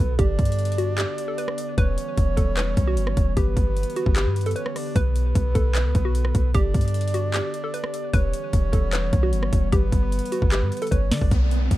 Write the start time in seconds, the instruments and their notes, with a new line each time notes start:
Already playing: ambient pad D3 B3 A4, synth pluck F#4, soft synth lead B4, impact
0.00 808-style bass B1
0.19 808-style bass G1, ambient pad D3 G4, synth pluck G4, soft synth lead D5, kick, closed hi-hat
0.39 808-style bass G2, kick, closed hi-hat
0.45 closed hi-hat
0.52 closed hi-hat
0.59 closed hi-hat
0.65 closed hi-hat
0.72 closed hi-hat
0.78 synth pluck F#4, closed hi-hat
0.98 synth pluck G4, clap, closed hi-hat
1.18 closed hi-hat
1.28 synth pluck A4
1.38 synth pluck B4, closed hi-hat
1.48 cross-stick
1.58 closed hi-hat
1.78 808-style bass E1, ambient pad E3 G3, synth pluck B4, soft synth lead C#5, kick, closed hi-hat
1.98 closed hi-hat
2.17 808-style bass E1, kick, closed hi-hat
2.37 808-style bass E1, synth pluck A4, kick, closed hi-hat
2.57 synth pluck B4, clap, closed hi-hat
2.77 808-style bass B1, kick, closed hi-hat
2.87 synth pluck F#4
2.97 808-style bass G1, closed hi-hat
3.07 cross-stick
3.17 808-style bass E1, kick, closed hi-hat
3.37 808-style bass G1, ambient pad D3 G4, synth pluck G4, soft synth lead B4, kick, closed hi-hat
3.57 808-style bass G1, kick, closed hi-hat
3.77 closed hi-hat
3.83 closed hi-hat
3.90 closed hi-hat
3.96 synth pluck F#4, closed hi-hat
4.06 808-style bass G1, kick
4.16 synth pluck G4, clap, closed hi-hat
4.26 808-style bass G2
4.36 closed hi-hat
4.41 closed hi-hat
4.46 synth pluck A4, closed hi-hat
4.51 closed hi-hat
4.56 synth pluck B4, soft synth lead C#5, closed hi-hat
4.66 cross-stick
4.76 soft synth lead D5, cross-stick, open hi-hat
4.96 808-style bass B1, ambient pad A4, soft synth lead B4, synth pluck B4, kick, closed hi-hat
5.16 closed hi-hat
5.35 808-style bass B1, kick, closed hi-hat
5.55 808-style bass B1, synth pluck A4, kick, closed hi-hat
5.75 synth pluck B4, clap, closed hi-hat
5.85 808-style bass C#2
5.95 808-style bass B1, kick, closed hi-hat
6.05 synth pluck F#4
6.15 closed hi-hat
6.25 cross-stick
6.35 808-style bass B1, kick, closed hi-hat
6.54 808-style bass G1, ambient pad G4, synth pluck G4, soft synth lead D5, kick, closed hi-hat
6.74 808-style bass G2, kick, closed hi-hat
6.81 closed hi-hat
6.88 closed hi-hat
6.94 closed hi-hat
7.01 closed hi-hat
7.08 closed hi-hat
7.14 synth pluck F#4, closed hi-hat
7.34 synth pluck G4, clap, closed hi-hat
7.54 closed hi-hat
7.64 synth pluck A4
7.74 synth pluck B4, closed hi-hat
7.84 cross-stick
7.94 closed hi-hat
8.13 808-style bass E1, ambient pad E3 G3 B3, synth pluck B4, soft synth lead C#5, kick, closed hi-hat
8.33 closed hi-hat
8.53 808-style bass E1, kick, closed hi-hat
8.73 808-style bass E1, synth pluck A4, kick, closed hi-hat
8.93 synth pluck B4, clap, closed hi-hat
9.13 808-style bass B1, kick, closed hi-hat
9.23 synth pluck F#4
9.33 808-style bass G1, closed hi-hat
9.43 cross-stick
9.53 808-style bass E1, kick, closed hi-hat
9.72 808-style bass G1, ambient pad D3, synth pluck G4, soft synth lead B4, kick, closed hi-hat
9.92 808-style bass G1, kick, closed hi-hat
10.12 closed hi-hat
10.19 closed hi-hat
10.26 closed hi-hat
10.32 synth pluck F#4, closed hi-hat
10.42 808-style bass G1, kick
10.52 synth pluck G4, clap, closed hi-hat
10.62 808-style bass G2
10.72 closed hi-hat
10.77 closed hi-hat
10.82 synth pluck A4, closed hi-hat
10.87 closed hi-hat
10.91 808-style bass G1, synth pluck B4, soft synth lead C#5, kick, closed hi-hat
11.12 808-style bass D3, soft synth lead D5, snare, open hi-hat
11.21 808-style bass G1, kick
11.31 808-style bass B1, kick, closed hi-hat, downlifter
11.51 closed hi-hat
11.71 808-style bass B1, kick, closed hi-hat